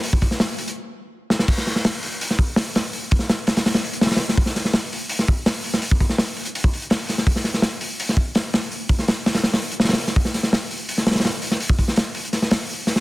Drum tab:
CC |--------------------------------|x-------------------------------|--------------------------------|--------------------------------|
HH |o---o---o---o-x-----------------|o---o---o---o---o---o---o---o---|o---o---o---o-o-o-o-o-x-ooooo---|o---o---o---o---o---o---o---o---|
SD |------o-o-------------------o-o-|--o-o-o-o---------o-----o---o---|------o-o---o-o-o-o-----ooooo-o-|--o-o-o-o---------o-----o-----o-|
BD |--o-o---------------------------|o-------------------o-----------|----o---------------------------|o-------------------o-----------|

CC |--------------------------------|--------------------------------|--------------------------------|--------------------------------|
HH |o---o---o---o-x-o---o-x-o---o---|o---o---o---o---o---o---o---o---|o---o---o---o-o-o-o-o-x-ooooo---|o---o---o---o---o---ooooo---o---|
SD |------o-o---------------o---o-o-|--o-o-o-o---------o-----o---o---|------o-o---o-o-o-o-----ooooo-o-|--o-o-o-o---------o-ooooo-----o-|
BD |--o-o-------------o-------------|o-------------------o-----------|----o---------------------------|o-------------------------------|

CC |--------------------------------|
HH |o---o---o---o-x-o---o---o---o---|
SD |------o-o-------o-o-o-------o-o-|
BD |--o-o---------------------------|